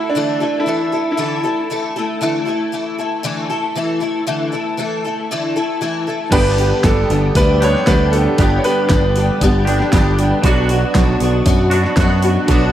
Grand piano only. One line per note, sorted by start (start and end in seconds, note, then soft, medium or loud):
0.00 0.14 E4 medium
0.10 0.66 D4 medium
0.60 1.10 E4 medium
1.12 1.88 E4 medium
6.32 6.85 B4 loud
6.84 7.37 A4 loud
7.36 7.62 B4 loud
7.63 7.88 C#5 loud
7.87 8.13 B4 loud
8.11 8.38 A4 medium
8.38 8.57 G4 medium
8.57 8.64 C#5 medium
8.64 9.37 B4 loud